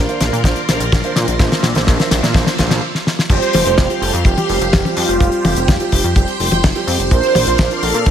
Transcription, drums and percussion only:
0.09 closed hi-hat
0.21 snare, closed hi-hat
0.34 closed hi-hat
0.44 kick, snare, closed hi-hat
0.56 closed hi-hat
0.69 snare, closed hi-hat
0.80 closed hi-hat
0.92 kick, snare, closed hi-hat
1.04 closed hi-hat
1.16 snare, closed hi-hat
1.28 closed hi-hat
1.39 kick, snare, closed hi-hat
1.52 snare, closed hi-hat
1.63 snare, closed hi-hat
1.75 snare, closed hi-hat
1.87 kick, snare, closed hi-hat
2.00 snare, closed hi-hat
2.11 snare, closed hi-hat
2.24 snare, closed hi-hat
2.34 kick, snare, closed hi-hat
2.47 snare, closed hi-hat
2.58 kick, snare, closed hi-hat
2.70 snare, closed hi-hat
2.95 snare
3.07 snare
3.19 snare
3.30 kick, closed hi-hat, crash
3.42 closed hi-hat
3.53 open hi-hat, high tom
3.66 closed hi-hat
3.78 kick, snare, closed hi-hat
3.90 closed hi-hat
4.02 open hi-hat
4.15 closed hi-hat
4.25 kick, closed hi-hat
4.38 closed hi-hat, high tom
4.49 open hi-hat
4.62 closed hi-hat
4.73 kick, snare, closed hi-hat, high tom
4.85 closed hi-hat, high tom
4.97 open hi-hat
5.09 closed hi-hat
5.20 kick, closed hi-hat
5.32 closed hi-hat
5.45 open hi-hat, high tom
5.57 closed hi-hat
5.68 kick, snare, closed hi-hat
5.80 closed hi-hat
5.92 kick, open hi-hat
6.04 closed hi-hat
6.16 kick, closed hi-hat
6.28 closed hi-hat
6.40 open hi-hat
6.51 closed hi-hat, high tom
6.64 kick, snare, closed hi-hat
6.76 closed hi-hat
6.88 open hi-hat
7.00 closed hi-hat
7.11 kick, closed hi-hat
7.23 closed hi-hat
7.35 open hi-hat, high tom
7.47 closed hi-hat
7.58 kick, snare, closed hi-hat
7.71 closed hi-hat
7.83 open hi-hat
7.94 closed hi-hat
8.06 kick, closed hi-hat

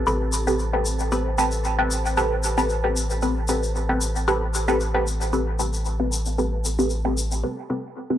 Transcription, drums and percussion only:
0.07 shaker
0.33 shaker
0.47 shaker
0.59 shaker
0.85 shaker
0.99 shaker
1.12 shaker
1.38 shaker
1.51 shaker
1.65 shaker
1.91 shaker
2.06 shaker
2.17 shaker
2.43 shaker
2.58 shaker
2.70 shaker
2.97 shaker
3.10 shaker
3.22 shaker
3.48 shaker
3.63 shaker
3.76 shaker
4.01 shaker
4.16 shaker
4.28 shaker
4.54 shaker
4.68 shaker
4.81 shaker
5.07 shaker
5.21 shaker
5.33 shaker
5.59 shaker
5.73 shaker
5.85 shaker
6.12 shaker
6.26 shaker
6.38 shaker
6.65 shaker
6.79 shaker
6.90 shaker
7.18 shaker
7.31 shaker

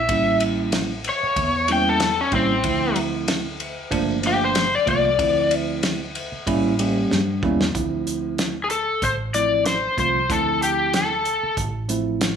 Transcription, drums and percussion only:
0.09 kick, ride
0.40 ride
0.72 snare, ride
1.04 ride
1.36 kick, ride
1.68 ride
2.00 snare, ride
2.32 kick, ride
2.64 kick, ride
2.96 ride
3.28 snare, ride
3.60 ride
3.91 kick, ride
4.23 ride
4.55 snare, ride
4.87 kick, ride
5.19 kick, ride
5.51 ride
5.83 snare, ride
6.15 ride
6.47 kick, ride
6.79 ride
7.11 snare
7.43 kick
7.61 snare
7.75 kick, closed hi-hat
8.07 closed hi-hat
8.38 snare, closed hi-hat
8.70 closed hi-hat
9.02 kick, closed hi-hat
9.34 closed hi-hat
9.66 snare, closed hi-hat
9.98 kick, closed hi-hat
10.30 kick, closed hi-hat
10.62 closed hi-hat
10.94 snare, closed hi-hat
11.25 closed hi-hat
11.57 kick, closed hi-hat
11.89 closed hi-hat
12.21 snare, closed hi-hat

